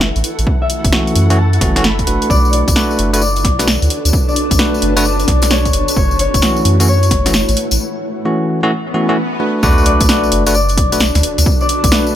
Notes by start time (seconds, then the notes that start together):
Already playing: F#1 E4 A4 E5 F#5
0.01 snare
0.16 A1, closed hi-hat
0.24 open hi-hat
0.39 A1, closed hi-hat
0.47 kick
0.62 E5
0.70 open hi-hat
0.84 F#1, kick, closed hi-hat
0.92 E3 A3 C#4 F#4, snare
1.07 closed hi-hat
1.15 F#2, open hi-hat
1.30 E3 A3 C#4 F#4, closed hi-hat
1.38 A5
1.53 closed hi-hat
1.61 F#1 E3 A3 C#4 F#4, kick, snare, open hi-hat
1.76 E3 A3 C#4 F#4, snare, closed hi-hat
1.84 B5, snare
1.99 kick, closed hi-hat
2.07 F#1 A3 D4 F#4 B4, open hi-hat
2.22 closed hi-hat
2.30 B1 D4 F#4 A4 C#5 D5, kick, tambourine
2.45 tambourine
2.53 D5, open hi-hat
2.60 B4
2.68 B1, kick, closed hi-hat, tambourine
2.76 A3 D4 F#4 B4, snare, tambourine
2.91 tambourine
2.99 F#1, open hi-hat
3.10 A3 D4 F#4 B4 A5, closed hi-hat, tambourine
3.21 D5, tambourine
3.36 closed hi-hat, tambourine
3.44 B1, kick, snare, open hi-hat
3.59 A3 D4 F#4 B4, snare, closed hi-hat, tambourine
3.67 snare, tambourine
3.82 D2, closed hi-hat, tambourine
3.90 open hi-hat
4.05 D2, closed hi-hat, tambourine
4.13 kick, tambourine
4.28 D5, tambourine
4.36 open hi-hat
4.51 B1, kick, closed hi-hat, tambourine
4.59 A3 D4 F#4 B4, snare, tambourine
4.74 tambourine
4.82 F#1, open hi-hat
4.97 A3 D4 F#4 B4, closed hi-hat, tambourine
5.05 D5, tambourine
5.19 closed hi-hat, tambourine
5.28 B1, kick, snare, open hi-hat
5.42 snare, closed hi-hat, tambourine
5.50 C#5, snare, tambourine
5.65 kick, closed hi-hat, tambourine
5.73 F#1 E4 F#4 C#5, open hi-hat
5.88 closed hi-hat, tambourine
5.96 F#1 C#5, kick, tambourine
6.07 A3, tambourine
6.13 F#5
6.19 C#5, open hi-hat
6.34 F#1, kick, closed hi-hat, tambourine
6.42 E3 A3 C#4 F#4, snare, tambourine
6.56 tambourine
6.65 F#2, open hi-hat
6.80 E3 A3 C#4 F#4, closed hi-hat, tambourine
6.88 C#5, tambourine
7.03 closed hi-hat, tambourine
7.11 F#1, kick, snare, open hi-hat
7.26 E3 A3 C#4 F#4, snare, closed hi-hat, tambourine
7.33 snare, tambourine
7.48 A1, closed hi-hat, tambourine
7.57 open hi-hat
7.71 A1, closed hi-hat, tambourine
8.25 E3 A3 C#4 F#4
8.63 E3 A3 C#4 F#4
8.71 swell
8.94 E3 A3 C#4 F#4
9.09 E3 A3 C#4 F#4
9.40 A3 D4 F#4 B4
9.63 B1 A3 D4 F#4 A4 B4 C#5 D5, kick, tambourine, sub drop
9.78 tambourine
9.86 D5, open hi-hat
9.98 B1 B4, kick, closed hi-hat, tambourine
10.09 A3 D4 F#4 B4, snare, tambourine
10.23 tambourine
10.32 F#1, open hi-hat
10.46 A3 D4 F#4 B4 A5, closed hi-hat, tambourine
10.54 D5, tambourine
10.69 closed hi-hat, tambourine
10.77 B1, kick, open hi-hat
10.92 A3 D4 F#4 B4, closed hi-hat, tambourine
11.00 snare, tambourine
11.15 D2, snare, closed hi-hat, tambourine
11.23 open hi-hat
11.38 D2, snare, closed hi-hat, tambourine
11.46 kick
11.61 D5, tambourine
11.69 open hi-hat
11.84 B1, kick, closed hi-hat, tambourine
11.91 A3 D4 F#4 B4, snare, tambourine
12.07 tambourine